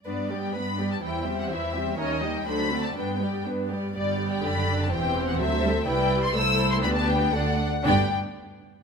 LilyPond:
<<
  \new Staff \with { instrumentName = "Violin section" } { \time 2/4 \key g \major \tempo 4 = 123 d''8. g''16 b''8. a''16 | g''8. fis''16 e''4 | ees''8. g''16 b''8. a''16 | g''4 r4 |
d''8. g''16 b''8. a''16 | g''8. fis''16 e''4 | g''8. c'''16 e'''8. c'''16 | b''16 a''16 g''8 fis''4 |
g''8 r4. | }
  \new Staff \with { instrumentName = "Violin section" } { \time 2/4 \key g \major b'8 <g' d''>8 b'8 <g' d''>8 | <e' c''>8 <g' e''>8 <e' c''>8 <g' e''>8 | <ees' des''>8 <g' ees''>8 <a' c''>8 <fis' d''>8 | b'8 <g' d''>8 b'8 <g' d''>8 |
<g' d''>2 | <g' c''>4 <a' c''>4 | <b' d''>4 <a' c''>4 | <g' b'>4 <a' d''>8 r8 |
<g' d''>8 r4. | }
  \new Staff \with { instrumentName = "Viola section" } { \time 2/4 \key g \major << { d'8 b8 d'8 b8 | e'8 c'8 e'8 c'8 | des'8 ees'8 d'8 c'8 | d'8 b8 d'8 b8 |
b4 d'4 | c'2 | e'4 e'4 | d'4 d'8 r8 |
d'8 r4. | } \\ { b8 g8 b8 g8 | e8 g8 e8 g8 | ees8 g8 fis8 a8 | b8 g8 b8 g8 |
g4 d4 | e4 fis8 g8 | g4 a4 | b4 a8 r8 |
b8 r4. | } >> }
  \new Staff \with { instrumentName = "Cello section" } { \clef bass \time 2/4 \key g \major g,4 g,4 | e,4 e,4 | ees,4 d,4 | g,4 g,4 |
g,4 fis,4 | e,4 d,4 | c,4 c,4 | d,4 d,8 r8 |
g,8 r4. | }
  \new Staff \with { instrumentName = "Double bass section" } { \clef bass \time 2/4 \key g \major r2 | r2 | r2 | r2 |
g,,4 fis,,4 | e,,4 d,4 | c,4 c,4 | d,4 d,8 r8 |
g,,8 r4. | }
>>